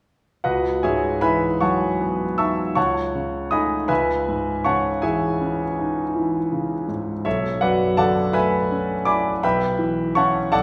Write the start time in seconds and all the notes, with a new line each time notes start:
0.44 C#2 F#4 B4 D#5 F#5
0.83 G#2 G#4 C#5 E5 G#5
1.21 E3 B4 E5 G#5 B5
1.61 F#3 C#5 F#5 A5 C#6
2.01 B3
2.38 D#4 E5 A5 C#6 E6
2.75 C#2 C#5 F#5 A5 C#6
3.15 C#3
3.51 A3 D#4 D#5 G#5 B5 D#6
3.88 C#2 B4 E5 G#5 B5
4.29 G#2
4.64 C#3 C#5 F#5 A5 C#6
5.02 E3 G#4 C#5 E5 G#5
5.41 C#4
5.79 D#4
6.16 E3
6.52 C#3
6.88 G#2
7.25 B1 A4 C#5 E5
7.61 F#2 F#4 B4 D5 F#5
7.97 D3 A4 D5 F#5 A5
8.33 A3 B4 E5 G#5 B5
8.72 C#4
9.05 E4 D5 G#5 B5 D6
9.43 B1 B4 E5 G5 B5
9.79 E3
10.15 C#4 E4 C#5 F#5 A5 C#6
10.52 B1 A4 D5 F#5 A5